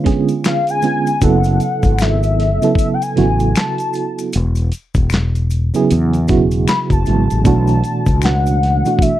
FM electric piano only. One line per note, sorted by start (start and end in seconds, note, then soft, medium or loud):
0.00 0.04 D3 medium
0.00 0.78 D3 medium
0.00 0.04 G#3 medium
0.00 0.05 B3 medium
0.00 0.06 C#4 medium
0.00 0.85 F4 loud
0.04 0.78 G#3 medium
0.04 0.79 B3 medium
0.04 0.79 C#4 medium
0.04 0.79 G#4 medium
0.82 1.19 D3 medium
0.82 1.20 G#3 medium
0.82 1.20 B3 medium
0.82 1.20 C#4 medium
0.82 1.21 F4 medium
1.21 2.50 C#3 loud
1.21 2.51 F#3 medium
1.21 2.51 B3 medium
1.21 2.51 E4 medium
1.21 2.52 A4 loud
2.62 3.13 C#3 medium
2.62 3.13 F#3 medium
2.62 3.14 B3 medium
2.62 3.14 E4 medium
2.62 3.14 A4 medium
3.16 4.33 C#3 medium
3.16 4.33 F#3 medium
3.16 4.33 B3 medium
3.16 4.34 E4 medium
3.16 4.34 F#4 medium
5.74 6.25 C#3 medium
5.74 6.25 F#3 medium
5.74 6.25 B3 medium
5.74 6.26 E4 medium
5.74 6.26 G#4 loud
6.28 7.02 C#3 medium
6.28 7.02 F#3 medium
6.28 7.02 B3 medium
6.28 7.03 E4 medium
6.28 7.03 F#4 medium
7.05 7.42 C#3 medium
7.05 7.43 F#3 medium
7.05 7.44 G#3 medium
7.05 7.43 B3 medium
7.05 7.43 E4 medium
7.44 8.74 B2 loud
7.44 8.74 E3 medium
7.44 8.74 A3 medium
7.44 8.75 D4 medium
7.44 8.75 F#4 loud
8.85 9.20 B2 medium
8.85 9.20 E3 medium
8.85 9.20 A3 medium
8.85 9.20 D4 medium
8.85 9.20 F#4 medium